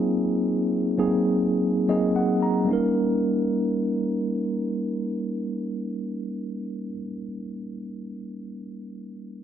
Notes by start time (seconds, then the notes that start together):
Already playing: F#3 A#3 C4 D#4 F4 G#4
0.98 F#3 A#3 C4 D#4 G#4
1.88 F#3 A#3 C4 D#4 G#4 D#5
2.16 F#5
2.42 A#5
2.64 G3 A#3
2.69 C#4 D#4
2.73 A#4